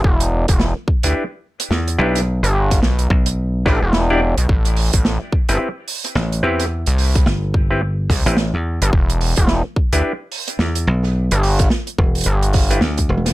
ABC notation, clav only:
X:1
M:4/4
L:1/16
Q:"Swing 16ths" 1/4=108
K:Ephr
V:1 name="Clav"
z6 z [DEGB]2 z4 z [DEGB]2 | z8 z2 [DEGB] z2 [DEGd] z2 | z6 z [CEGB]2 z4 z [CEGB]2 | z6 z [CEGB] z3 [CEGB] z4 |
z6 z [DEGB]2 z6 z | z8 z3 [DEGB] z4 |]